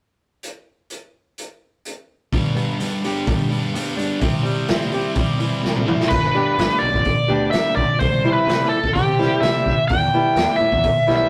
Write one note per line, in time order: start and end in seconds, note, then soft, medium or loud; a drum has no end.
0.43 closed hi-hat soft
0.90 closed hi-hat soft
1.38 closed hi-hat soft
1.85 closed hi-hat soft
2.32 3.50 G2 medium
2.32 2.54 G2 medium
2.32 2.55 D3 medium
2.32 2.56 G3 medium
2.32 kick medium
2.32 open hi-hat medium
2.55 2.79 G2 medium
2.55 2.80 D3 medium
2.55 2.81 G3 medium
2.55 3.25 B3 medium
2.55 open hi-hat soft
2.80 3.02 G2 medium
2.80 3.03 D3 medium
2.80 3.04 G3 medium
2.80 3.96 D4 medium
2.80 open hi-hat medium
3.03 3.26 G2 medium
3.03 3.26 D3 medium
3.03 3.28 G3 medium
3.03 4.93 G4 medium
3.03 open hi-hat soft
3.26 3.49 G2 medium
3.26 3.50 D3 medium
3.26 3.52 G3 medium
3.26 3.72 B3 medium
3.26 kick medium
3.26 open hi-hat medium
3.51 3.73 G2 medium
3.51 3.74 D3 medium
3.51 4.43 G3 medium
3.51 3.75 G3 medium
3.51 open hi-hat soft
3.73 3.95 G2 medium
3.73 3.97 D3 medium
3.73 3.98 G3 medium
3.73 4.21 B3 medium
3.73 open hi-hat medium
3.96 4.19 G2 medium
3.96 4.20 D3 medium
3.96 4.21 G3 medium
3.96 4.21 D4 medium
3.96 open hi-hat soft
4.19 5.38 C3 medium
4.19 4.42 C3 medium
4.19 4.43 G3 medium
4.19 4.44 C4 medium
4.19 kick medium
4.19 open hi-hat medium
4.43 4.69 C3 medium
4.43 5.15 G3 medium
4.43 4.69 G3 medium
4.43 4.70 C4 medium
4.43 open hi-hat soft
4.68 4.91 C3 medium
4.68 4.92 G3 medium
4.68 4.92 C4 medium
4.68 5.86 E4 medium
4.68 snare medium
4.68 open hi-hat medium
4.81 snare soft
4.92 5.14 C3 medium
4.92 5.15 G3 medium
4.92 5.16 C4 medium
4.92 6.11 G4 medium
4.92 open hi-hat soft
5.15 5.38 C3 medium
5.15 5.38 G3 medium
5.15 5.63 G3 medium
5.15 5.39 C4 medium
5.15 kick loud
5.15 open hi-hat medium
5.39 5.60 C3 medium
5.39 6.10 E3 medium
5.39 5.61 G3 medium
5.39 5.62 C4 medium
5.39 open hi-hat soft
5.61 5.84 C3 medium
5.61 5.85 G3 medium
5.61 6.11 G3 medium
5.61 5.86 C4 medium
5.61 snare soft
5.76 mid tom soft
5.86 6.08 C3 medium
5.86 6.09 G3 medium
5.86 6.09 C4 medium
5.86 6.11 E4 medium
5.86 mid tom medium
6.01 snare medium
6.09 6.29 G1 medium
6.09 6.82 B4 medium
6.09 kick medium
6.09 crash medium
6.35 6.57 G3 medium
6.35 6.58 B3 medium
6.35 6.58 D4 medium
6.35 6.58 G4 medium
6.58 6.67 G1 medium
6.58 6.89 G3 medium
6.58 6.89 B3 medium
6.58 6.89 D4 medium
6.58 6.89 G4 medium
6.58 snare medium
6.58 open hi-hat soft
6.79 6.91 B1 medium
6.79 7.51 D5 medium
6.94 7.12 G1 medium
6.94 kick medium
7.05 kick medium
7.05 open hi-hat soft
7.28 7.47 D2 medium
7.28 7.51 G3 medium
7.28 7.52 B3 medium
7.28 7.52 D4 medium
7.28 7.52 G4 medium
7.51 7.83 G3 medium
7.51 7.83 B3 medium
7.51 7.83 D4 medium
7.51 7.83 G4 medium
7.51 7.73 E5 medium
7.51 snare medium
7.51 open hi-hat soft
7.76 7.86 B1 medium
7.76 7.98 D5 medium
7.76 kick medium
7.99 8.09 C2 medium
7.99 8.33 C5 medium
7.99 kick medium
7.99 open hi-hat soft
8.12 8.39 C2 medium
8.25 8.47 E3 medium
8.25 8.47 G3 medium
8.25 8.47 C4 medium
8.25 8.47 E4 medium
8.33 8.67 B4 medium
8.47 8.65 C3 medium
8.47 8.78 E3 medium
8.47 8.78 G3 medium
8.47 8.78 C4 medium
8.47 8.79 E4 medium
8.47 snare medium
8.47 open hi-hat soft
8.69 8.94 A4 medium
8.84 kick medium
8.93 9.31 C3 medium
8.93 9.42 G4 medium
8.93 kick medium
8.93 open hi-hat soft
9.19 9.42 E3 medium
9.19 9.43 G3 medium
9.19 9.42 C4 medium
9.19 9.42 E4 medium
9.19 snare soft
9.41 9.78 C3 medium
9.41 9.73 E3 medium
9.41 9.73 G3 medium
9.41 9.73 C4 medium
9.41 9.85 E5 medium
9.41 snare medium
9.41 open hi-hat soft
9.45 9.74 E4 medium
9.66 kick medium
9.88 10.08 E2 medium
9.88 10.61 G5 medium
9.88 kick loud
9.88 open hi-hat soft
10.14 10.36 E3 medium
10.14 10.37 G3 medium
10.14 10.37 B3 medium
10.14 10.37 E4 medium
10.36 10.45 E2 medium
10.36 10.68 E3 medium
10.36 10.68 G3 medium
10.36 10.68 B3 medium
10.36 10.68 E4 medium
10.36 snare medium
10.36 open hi-hat soft
10.56 11.13 E5 medium
10.61 10.69 A2 medium
10.72 10.90 E2 medium
10.72 kick medium
10.84 kick medium
10.84 open hi-hat soft
11.07 11.26 B1 medium
11.07 11.29 E3 medium
11.07 11.29 G3 medium
11.07 11.29 B3 medium
11.07 11.29 E4 medium
11.07 snare soft
11.16 11.29 E5 medium